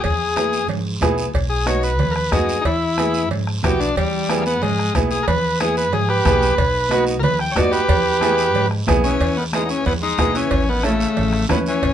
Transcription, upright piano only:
0.36 0.59 B3 medium
0.36 0.59 E4 medium
0.36 0.60 G#4 medium
1.01 1.25 B3 medium
1.01 1.25 E4 medium
1.01 1.25 G#4 loud
1.66 1.90 B3 medium
1.66 1.90 D#4 medium
1.66 1.90 F#4 medium
2.31 2.55 B3 medium
2.31 2.55 D#4 medium
2.31 2.55 F#4 medium
2.98 3.21 B3 medium
2.98 3.21 E4 medium
2.98 3.22 G#4 medium
3.64 3.87 B3 medium
3.64 3.87 E4 medium
3.64 3.87 F#4 medium
4.30 4.52 B3 medium
4.30 4.52 E4 medium
4.30 4.53 G#4 medium
4.95 5.18 B3 medium
4.95 5.18 E4 medium
4.95 5.18 G#4 medium
5.60 5.83 B3 medium
5.60 5.84 E4 medium
5.60 5.84 G#4 medium
6.25 6.48 B3 medium
6.25 6.48 E4 medium
6.25 6.49 G#4 medium
6.91 7.14 B3 medium
6.91 7.14 D#4 medium
6.91 7.14 F#4 loud
7.56 7.79 B3 medium
7.56 7.79 D#4 medium
7.56 7.79 F#4 medium
8.22 8.45 B3 medium
8.22 8.45 E4 medium
8.22 8.45 G#4 loud
8.88 9.10 B3 loud
8.88 9.11 E4 medium
8.88 9.11 G#4 loud
9.54 9.76 B3 medium
9.54 9.76 E4 medium
9.54 9.77 G#4 medium
10.18 10.41 B3 medium
10.18 10.41 E4 medium
10.18 10.42 G#4 medium
10.84 11.07 C#4 medium
10.84 11.07 E4 medium
10.84 11.07 A4 medium
11.49 11.72 C#4 medium
11.49 11.73 E4 medium
11.49 11.73 B4 medium

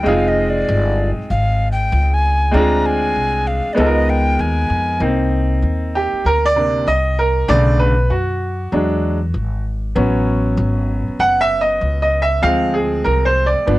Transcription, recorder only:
0.07 0.30 F5 medium
0.28 0.51 D#5 medium
0.50 1.10 D5 loud
1.31 1.69 F5 loud
1.72 2.15 G5 loud
2.14 2.56 G#5 medium
2.54 2.87 A#5 medium
2.86 3.49 G#5 loud
3.47 3.75 F5 medium
3.73 3.80 D5 medium
3.79 4.11 D#5 medium
4.10 4.42 G5 loud
4.40 5.02 G#5 medium

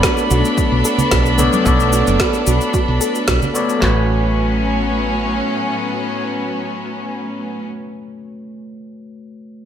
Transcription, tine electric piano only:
0.00 1.38 B3 medium
0.00 1.38 A4 medium
0.00 1.39 C#5 medium
0.00 1.40 D5 medium
1.38 1.62 B3 medium
1.38 1.63 A4 medium
1.38 1.63 C#5 medium
1.38 1.63 D5 medium
1.64 3.51 B3 medium
1.64 3.52 A4 medium
1.64 3.52 C#5 medium
1.68 3.53 D5 medium
3.54 3.78 B3 medium
3.54 3.79 A4 medium
3.54 3.79 C#5 medium
3.54 3.79 D5 medium
3.79 7.65 A3 medium
3.79 7.67 F#4 medium
3.83 7.69 B4 medium
3.83 7.71 C#5 medium

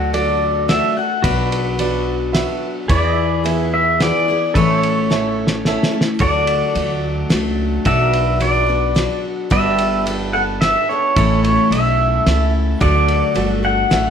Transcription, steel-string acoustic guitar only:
0.00 0.14 D3 medium
0.00 0.13 F#3 medium
0.00 0.13 A3 medium
0.00 0.14 D4 medium
0.00 0.15 F#4 medium
0.13 0.67 F#3 medium
0.13 0.68 A3 medium
0.13 0.69 D4 medium
0.13 0.69 F#4 medium
0.68 0.96 F#3 medium
0.68 0.97 A3 medium
0.68 0.96 D4 medium
0.68 0.96 F#4 medium
0.97 1.24 A3 soft
0.97 1.24 D4 soft
0.97 1.24 F#4 soft
1.24 1.79 B2 medium
1.24 1.77 F#3 medium
1.24 1.79 B3 medium
1.24 1.79 D4 medium
1.24 1.80 F#4 medium
1.79 2.33 F#3 medium
1.79 2.34 B3 medium
1.79 2.34 D4 medium
1.79 2.35 F#4 medium
2.34 2.89 F#3 medium
2.34 2.89 B3 medium
2.34 2.90 D4 medium
2.34 2.90 F#4 medium
2.90 3.44 E3 medium
2.90 3.44 B3 medium
2.90 3.45 E4 medium
2.90 3.45 G#4 medium
3.44 3.99 E3 medium
3.44 3.99 B3 medium
3.44 4.00 E4 medium
3.44 4.00 G#4 medium
4.00 4.28 E3 medium
4.00 4.28 B3 medium
4.00 4.28 E4 medium
4.00 4.27 G#4 medium
4.28 4.56 B3 soft
4.28 4.55 E4 soft
4.28 4.56 G#4 soft
4.56 5.11 A2 medium
4.56 5.11 E3 medium
4.56 5.09 A3 medium
4.56 5.09 C#4 medium
4.56 5.10 E4 medium
4.56 5.11 A4 medium
5.10 5.65 A3 medium
5.10 5.65 C#4 medium
5.10 5.66 E4 medium
5.10 5.67 A4 medium
5.66 5.93 A3 medium
5.66 5.92 C#4 medium
5.66 5.92 E4 medium
5.66 5.90 A4 medium
5.91 6.19 A3 soft
5.91 6.20 C#4 soft
5.91 6.21 E4 soft
5.91 6.20 A4 medium
6.20 6.76 D3 medium
6.20 6.75 F#3 medium
6.20 6.75 A3 medium
6.20 6.76 D4 medium
6.20 6.77 F#4 medium
6.75 7.28 F#3 medium
6.75 7.30 A3 medium
6.75 7.31 D4 medium
6.75 7.31 F#4 medium
7.30 7.85 F#3 medium
7.30 7.86 A3 medium
7.30 7.86 D4 medium
7.30 7.86 F#4 medium
7.86 8.41 B2 medium
7.86 8.39 F#3 medium
7.86 8.40 B3 medium
7.86 8.41 D4 medium
7.86 8.41 F#4 medium
8.40 8.68 F#3 medium
8.40 8.68 B3 medium
8.40 8.67 D4 medium
8.40 8.65 F#4 medium
8.66 8.94 B3 soft
8.66 8.95 D4 soft
8.66 8.95 F#4 soft
8.95 9.50 F#3 medium
8.95 9.49 B3 medium
8.95 9.50 D4 medium
8.95 9.51 F#4 medium
9.50 10.04 G3 medium
9.50 10.05 B3 medium
9.50 10.06 D4 medium
9.50 10.08 A4 medium
10.06 10.34 G3 medium
10.06 10.34 B3 medium
10.06 10.33 D4 medium
10.06 10.32 A4 medium
10.33 10.61 B3 soft
10.33 10.61 D4 soft
10.33 10.61 A4 soft
10.61 10.89 G3 medium
10.61 10.89 B3 medium
10.61 10.90 D4 medium
10.61 10.89 A4 medium
10.90 11.18 B3 soft
10.90 11.18 D4 soft
10.90 11.17 A4 soft
11.17 11.72 A2 medium
11.17 11.72 E3 medium
11.17 11.72 A3 medium
11.17 11.73 C#4 medium
11.17 11.73 E4 medium
11.17 11.74 A4 medium
11.73 12.25 A3 medium
11.73 12.26 C#4 medium
11.73 12.27 E4 medium
11.73 12.27 A4 medium
12.27 12.80 A3 medium
12.27 12.81 C#4 medium
12.27 12.82 E4 medium
12.27 12.82 A4 medium
12.80 13.36 D3 medium
12.80 13.34 F#3 medium
12.80 13.34 A3 medium
12.80 13.36 D4 medium
12.80 13.37 F#4 medium
13.34 13.63 F#3 medium
13.34 13.64 A3 medium
13.34 13.63 D4 medium
13.34 13.62 F#4 medium
13.63 13.90 A3 soft
13.63 13.90 D4 soft
13.63 13.91 F#4 soft
13.90 14.10 F#3 medium
13.90 14.10 A3 medium
13.90 14.10 D4 medium
13.90 14.10 F#4 medium

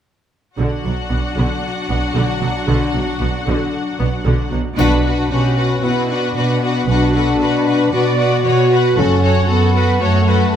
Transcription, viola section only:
0.59 0.83 D3 soft
0.59 4.54 D4 soft
0.84 0.92 F#3 soft
1.10 1.18 B3 soft
1.36 1.61 D3 soft
1.89 1.97 B3 soft
2.15 2.40 D3 soft
2.42 2.50 F#3 soft
2.68 2.92 D3 soft
2.94 3.02 F#3 soft
3.20 3.28 B3 soft
3.46 3.71 D3 soft
4.00 4.08 B3 soft
4.25 4.50 D3 soft
4.51 4.59 F#3 soft
4.77 5.26 F#4 soft
5.30 5.57 G4 soft
5.57 5.83 F#4 soft
5.84 6.10 E4 soft
6.11 6.89 D4 soft
6.89 7.14 F#4 soft
7.14 7.40 A4 soft
7.41 7.93 B4 soft
7.94 8.45 D5 medium
8.47 8.71 C#5 soft
8.72 8.98 B4 soft
8.98 9.24 A4 soft
9.24 9.49 C#5 medium
9.50 9.75 A4 soft
9.76 10.02 B4 medium
10.02 10.28 C#5 medium
10.29 10.55 B4 soft

